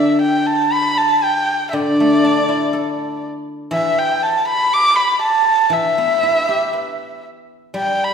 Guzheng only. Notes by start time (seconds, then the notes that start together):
Already playing: D3
1.73 D3
2.00 A3
2.25 D4
2.49 E4
2.73 A4
3.71 E3
5.70 E3
5.98 B3
6.23 E4
6.49 G4
6.73 B4
7.74 G3